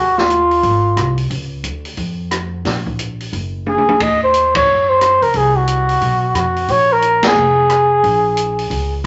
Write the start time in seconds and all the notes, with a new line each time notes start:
Already playing: D#2 F#4
0.18 F4, snare
0.30 closed hi-hat
0.51 open hi-hat
0.63 G#1, kick, open hi-hat
0.96 C2, cross-stick, closed hi-hat
1.18 open hi-hat
1.30 C#2, kick, open hi-hat
1.64 D2, closed hi-hat
1.85 open hi-hat
1.97 F2, kick, open hi-hat
2.31 cross-stick, closed hi-hat
2.65 A#1, kick, snare, open hi-hat
2.87 kick
2.99 closed hi-hat
3.20 open hi-hat
3.33 F#1, kick, open hi-hat
3.67 G#4, high tom
3.77 C#2, high tom
3.89 E2, high tom
4.00 D#2 D#5, kick, ride
4.24 C5
4.34 closed hi-hat
4.55 C#5, kick, ride
4.67 F#2
4.89 C5
5.01 cross-stick, closed hi-hat
5.22 C#2 A#4, open hi-hat
5.34 C2 G#4, kick, open hi-hat
5.56 F#4
5.67 closed hi-hat
5.89 open hi-hat
6.01 B1, kick, open hi-hat
6.34 F2 F#4, cross-stick, closed hi-hat
6.56 open hi-hat
6.68 A#1 C#5, kick, open hi-hat
6.93 A#4
7.02 closed hi-hat
7.23 snare, ride
7.27 G#4
7.35 F1
7.70 cross-stick, closed hi-hat
8.03 A#1, kick, open hi-hat
8.37 closed hi-hat
8.59 open hi-hat
8.70 C#2, kick, open hi-hat